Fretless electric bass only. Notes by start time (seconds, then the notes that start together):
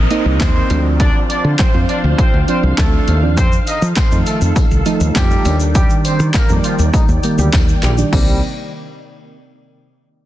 0.26 C2
0.40 D#2
0.70 D2
1.44 D3
1.74 F2
2.04 D2
2.34 D2
2.63 C2
2.78 D2
3.08 D#2
3.38 F2
3.82 F3
4.12 F2
4.41 F2
4.71 C2
5.01 D#2
5.16 F2
5.45 D#2
6.20 D#3
6.49 F2
6.79 D#2
7.09 D#2
7.38 D2
7.53 D#2
7.83 A#1
8.13 C2